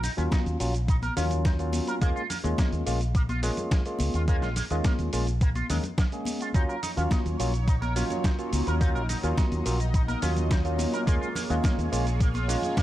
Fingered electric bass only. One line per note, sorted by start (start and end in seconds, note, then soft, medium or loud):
0.18 0.27 D#2 medium
0.46 0.55 D#2 medium
0.60 1.08 A#1 medium
1.17 1.79 D#2 medium
2.02 2.10 D#2 medium
2.44 2.53 D#2 medium
2.72 2.81 D#2 medium
2.87 3.49 A#1 medium
4.00 4.09 C#2 loud
4.14 4.42 D#2 medium
4.42 4.60 A#1 medium
4.71 4.79 D#2 medium
4.99 5.08 D#2 medium
5.13 5.61 A#1 medium
5.70 5.79 D#2 medium
6.54 6.63 D#2 medium
6.97 7.06 D#2 medium
7.26 7.34 D#2 medium
7.40 8.02 A#1 medium
8.53 8.62 C#2 medium
8.67 8.95 D#2 medium
8.95 9.13 A#1 medium
9.24 9.32 D#2 medium
9.52 9.61 D#2 medium
9.66 10.14 A#1 medium
10.23 10.85 D#2 medium
11.07 11.16 D#2 medium
11.50 11.59 D#2 medium
11.78 11.87 D#2 medium
11.92 12.55 A#1 medium